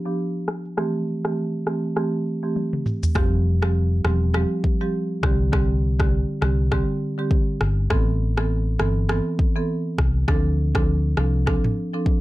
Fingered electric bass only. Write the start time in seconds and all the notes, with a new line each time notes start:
3.15 F1
4.04 E1
5.23 C2
6.42 C2
7.61 G1
7.90 A1
8.80 G1
9.98 C2
10.28 D2
11.17 C2